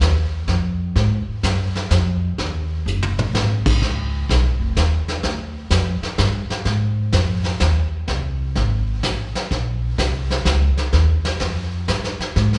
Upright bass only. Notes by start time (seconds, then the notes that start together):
0.01 D#2
0.48 F2
0.96 G#2
1.28 muted upright bass stroke
1.43 F#2
1.91 F2
2.39 D#2
2.86 F#1
3.33 G#1
3.82 C#2
4.29 B1
4.43 G#1
4.59 F1
4.77 D#2
5.23 D2
5.71 F2
6.02 muted upright bass stroke
6.19 G2
6.50 muted upright bass stroke
6.65 G#2
7.13 F2
7.61 D#2
8.09 C2
8.56 G#1
9.03 A1
9.34 muted upright bass stroke
9.51 A#1
9.98 C2
10.45 C#2
10.77 muted upright bass stroke
10.93 D#2
11.40 F2
11.88 G2
12.19 muted upright bass stroke
12.36 G#2